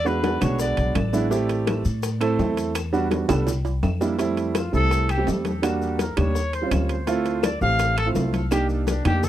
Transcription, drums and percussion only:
0.05 high bongo, high conga, maracas
0.24 high bongo, high conga, high timbale, maracas
0.41 high conga, low conga, high timbale, claves, maracas
0.59 high bongo, high conga, maracas
0.77 high bongo, high conga, high timbale, maracas
0.95 high bongo, low bongo, high conga, high timbale, low timbale, claves, maracas
1.13 high bongo, high conga, maracas
1.31 high bongo, high conga, maracas
1.49 high bongo, high conga, high timbale, maracas
1.67 high bongo, high conga, high timbale, claves, maracas
1.85 high conga, maracas
2.03 high bongo, high conga, high timbale, maracas
2.21 high bongo, high conga, high timbale, claves, maracas
2.39 high bongo, low bongo, high conga, low timbale, maracas
2.57 high bongo, high timbale, maracas
2.75 high bongo, high conga, high timbale, claves, maracas
2.93 high bongo, high conga, maracas
3.11 high bongo, high conga, high timbale, maracas
3.29 high bongo, high conga, low conga, high timbale, claves, maracas
3.47 high conga, low conga, high timbale, maracas
3.65 high conga, high timbale, maracas
3.83 high conga, low timbale, claves, maracas
4.01 low bongo, low timbale, maracas
4.19 high bongo, high conga, high timbale, maracas
4.37 high bongo, high conga, high timbale, maracas
4.55 high bongo, high conga, high timbale, claves, maracas
4.74 maracas
4.91 high bongo, high conga, high timbale, maracas
5.09 high bongo, high conga, high timbale, claves, maracas
5.27 high bongo, low bongo, high conga, low timbale, maracas
5.45 high bongo, high conga, high timbale, maracas
5.63 high bongo, high conga, high timbale, claves, maracas
5.81 high bongo, high conga, maracas
5.99 high bongo, high conga, high timbale, maracas
6.17 high conga, low conga, high timbale, claves, maracas
6.35 high bongo, maracas
6.53 high bongo, high conga, high timbale, maracas
6.71 high bongo, low bongo, high conga, high timbale, low timbale, claves, maracas
6.89 high bongo, high timbale, maracas
7.07 high bongo, high conga, high timbale, maracas
7.25 high bongo, high conga, high timbale, maracas
7.43 high bongo, high conga, high timbale, claves, maracas
7.62 maracas
7.79 high bongo, high conga, high timbale, maracas
7.97 high bongo, high conga, high timbale, claves, maracas
8.15 high bongo, low bongo, high conga, low timbale, maracas
8.33 high bongo, high conga, high timbale, maracas
8.51 high bongo, high conga, high timbale, claves, maracas
8.69 high bongo, high conga, maracas
8.87 high bongo, high conga, high timbale, maracas
9.05 high conga, low conga, high timbale, claves, maracas
9.23 high bongo, high conga, low conga, maracas

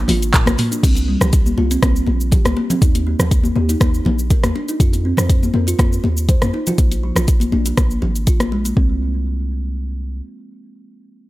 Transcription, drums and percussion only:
0.08 open hi-hat, muted conga, high conga, low conga
0.22 closed hi-hat, shaker
0.34 kick, clap, closed hi-hat, mid tom, shaker
0.46 cross-stick, closed hi-hat, high conga, shaker
0.57 mid tom, open hi-hat, muted conga, high conga
0.72 closed hi-hat, shaker
0.83 kick, closed hi-hat, crash, shaker
0.95 closed hi-hat, muted conga, shaker
1.21 cross-stick, low conga, shaker
1.33 kick, closed hi-hat, muted conga, shaker
1.46 high conga, shaker
1.58 high conga
1.71 closed hi-hat, muted conga, shaker
1.83 kick, cross-stick, closed hi-hat, high conga, shaker
1.96 shaker
2.06 muted conga, high conga
2.21 shaker
2.32 kick, closed hi-hat, low conga, shaker
2.45 cross-stick, closed hi-hat, high conga, shaker
2.57 muted conga
2.70 closed hi-hat, low conga, shaker
2.82 kick, closed hi-hat, shaker
2.95 closed hi-hat, muted conga, shaker
3.19 cross-stick, low conga, shaker
3.31 kick, closed hi-hat, muted conga, shaker
3.44 high conga, shaker
3.55 high conga
3.69 closed hi-hat, muted conga, shaker
3.80 kick, cross-stick, closed hi-hat, high conga, shaker
3.94 shaker
4.05 muted conga, high conga, low conga
4.19 shaker
4.30 kick, closed hi-hat, shaker
4.44 cross-stick, closed hi-hat, high conga, shaker
4.56 muted conga
4.68 closed hi-hat, shaker
4.80 kick, closed hi-hat, shaker
4.93 closed hi-hat, muted conga, shaker
5.17 cross-stick, low conga, shaker
5.29 kick, closed hi-hat, muted conga, shaker
5.43 high conga, shaker
5.54 high conga
5.67 closed hi-hat, muted conga, shaker
5.79 kick, cross-stick, closed hi-hat, high conga, shaker
5.93 shaker
6.04 muted conga, high conga
6.17 shaker
6.29 kick, closed hi-hat, low conga, shaker
6.42 cross-stick, closed hi-hat, high conga, shaker
6.54 muted conga
6.67 closed hi-hat, low conga, shaker
6.78 kick, closed hi-hat, shaker
6.92 closed hi-hat, muted conga, shaker
7.16 cross-stick, closed hi-hat, low conga, shaker
7.27 kick, closed hi-hat, muted conga, shaker
7.40 closed hi-hat, high conga, shaker
7.52 high conga
7.65 closed hi-hat, muted conga, shaker
7.77 kick, cross-stick, closed hi-hat, high conga, shaker
7.91 shaker
8.02 muted conga, high conga, low conga
8.16 closed hi-hat, shaker
8.27 kick, closed hi-hat, shaker
8.40 cross-stick, closed hi-hat, high conga, shaker
8.52 muted conga
8.65 closed hi-hat, shaker
8.77 kick

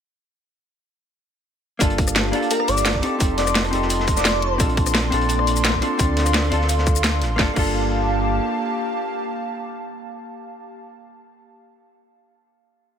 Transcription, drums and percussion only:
1.80 kick, closed hi-hat, shaker
1.90 closed hi-hat
1.98 kick, closed hi-hat
2.08 cross-stick, shaker
2.16 snare, closed hi-hat
2.25 cross-stick
2.33 closed hi-hat
2.43 closed hi-hat
2.51 closed hi-hat, shaker
2.60 cross-stick
2.68 closed hi-hat, shaker
2.77 closed hi-hat, shaker
2.85 snare, closed hi-hat, shaker
2.95 kick
3.02 closed hi-hat
3.20 kick, closed hi-hat, shaker
3.38 snare, closed hi-hat
3.47 cross-stick, closed hi-hat, shaker
3.55 snare, closed hi-hat
3.64 cross-stick, closed hi-hat
3.73 closed hi-hat
3.82 snare
3.90 closed hi-hat, shaker
4.00 snare
4.08 kick, closed hi-hat, shaker
4.17 snare, shaker
4.25 snare, closed hi-hat, shaker
4.42 closed hi-hat
4.60 kick, closed hi-hat, shaker
4.69 closed hi-hat
4.77 kick, closed hi-hat
4.86 cross-stick, shaker
4.94 snare, closed hi-hat
5.04 cross-stick
5.12 closed hi-hat
5.21 closed hi-hat
5.29 closed hi-hat, shaker
5.39 cross-stick
5.47 closed hi-hat, shaker
5.56 closed hi-hat, shaker
5.65 snare, closed hi-hat, shaker
5.74 kick
5.82 closed hi-hat
5.99 kick, closed hi-hat, shaker
6.17 snare, closed hi-hat
6.26 cross-stick, closed hi-hat, shaker
6.33 snare, closed hi-hat
6.44 cross-stick, closed hi-hat
6.52 closed hi-hat
6.61 snare
6.69 closed hi-hat, shaker
6.78 snare
6.87 kick, closed hi-hat, shaker
6.96 shaker
7.04 snare, closed hi-hat, shaker
7.22 snare, closed hi-hat
7.39 kick, snare
7.56 kick, crash

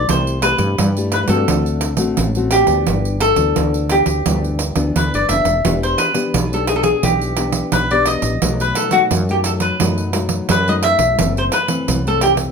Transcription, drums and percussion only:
0.09 pandeiro
0.27 pandeiro
0.42 pandeiro
0.58 pandeiro
0.78 pandeiro
0.97 pandeiro
1.12 pandeiro
1.28 pandeiro
1.48 pandeiro
1.66 pandeiro
1.81 pandeiro
1.97 pandeiro
2.17 pandeiro
2.35 pandeiro
2.51 pandeiro
2.67 pandeiro
2.87 pandeiro
3.05 pandeiro
3.20 pandeiro
3.36 pandeiro
3.56 pandeiro
3.74 pandeiro
3.90 pandeiro
4.06 pandeiro
4.26 pandeiro
4.44 pandeiro
4.59 pandeiro
4.76 pandeiro
4.96 pandeiro
5.14 pandeiro
5.29 pandeiro
5.45 pandeiro
5.65 pandeiro
5.83 pandeiro
5.98 pandeiro
6.14 pandeiro
6.34 pandeiro
6.53 pandeiro
6.67 pandeiro
6.84 pandeiro
7.03 pandeiro
7.21 pandeiro
7.37 pandeiro
7.52 pandeiro
7.72 pandeiro
7.91 pandeiro
8.06 pandeiro
8.22 pandeiro
8.42 pandeiro
8.60 pandeiro
8.75 pandeiro
8.91 pandeiro
9.11 pandeiro
9.29 pandeiro
9.44 pandeiro
9.60 pandeiro
9.80 pandeiro
9.98 pandeiro
10.13 pandeiro
10.29 pandeiro
10.49 pandeiro
10.68 pandeiro
10.83 pandeiro
10.99 pandeiro
11.19 pandeiro
11.37 pandeiro
11.52 pandeiro
11.68 pandeiro
11.88 pandeiro
12.07 pandeiro
12.21 pandeiro
12.37 pandeiro

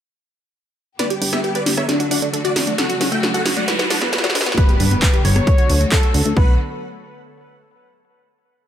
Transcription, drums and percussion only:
0.99 snare, closed hi-hat
1.10 closed hi-hat
1.22 open hi-hat
1.33 cross-stick, snare, closed hi-hat
1.44 closed hi-hat
1.55 closed hi-hat
1.66 snare, open hi-hat
1.78 cross-stick, closed hi-hat
1.89 snare, closed hi-hat
2.00 closed hi-hat
2.11 open hi-hat
2.22 closed hi-hat
2.34 closed hi-hat
2.45 closed hi-hat
2.56 snare, open hi-hat
2.67 closed hi-hat
2.78 snare, closed hi-hat
2.90 closed hi-hat
3.01 snare, open hi-hat
3.12 closed hi-hat
3.23 snare, closed hi-hat
3.34 closed hi-hat
3.46 snare, open hi-hat
3.57 closed hi-hat
3.68 snare, closed hi-hat
3.79 snare, closed hi-hat
3.90 snare, open hi-hat
4.02 snare, closed hi-hat
4.13 snare, closed hi-hat
4.18 snare
4.24 snare, closed hi-hat
4.30 snare
4.35 snare, open hi-hat
4.41 snare
4.46 snare, closed hi-hat
4.52 snare
4.58 kick, closed hi-hat
4.69 closed hi-hat
4.80 open hi-hat
4.91 closed hi-hat
5.02 kick, clap, closed hi-hat
5.14 closed hi-hat
5.25 cross-stick, open hi-hat
5.36 cross-stick, closed hi-hat
5.47 kick, closed hi-hat
5.58 closed hi-hat
5.70 open hi-hat
5.81 closed hi-hat
5.92 kick, clap, closed hi-hat
6.03 closed hi-hat
6.14 open hi-hat
6.26 closed hi-hat
6.37 kick

